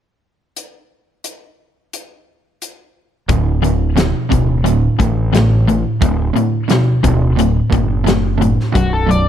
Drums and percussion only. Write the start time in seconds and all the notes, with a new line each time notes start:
0.56 closed hi-hat
1.24 closed hi-hat
1.93 closed hi-hat
2.62 closed hi-hat
3.29 kick, closed hi-hat
3.64 closed hi-hat
3.97 snare, closed hi-hat
4.32 kick, closed hi-hat
4.66 closed hi-hat
5.00 kick, closed hi-hat
5.34 snare, closed hi-hat
5.69 closed hi-hat
6.02 kick, closed hi-hat
6.36 closed hi-hat
6.69 snare, closed hi-hat
7.04 kick, closed hi-hat
7.39 closed hi-hat
7.72 kick, closed hi-hat
8.07 snare, closed hi-hat
8.42 closed hi-hat
8.60 snare
8.75 kick, closed hi-hat
9.11 closed hi-hat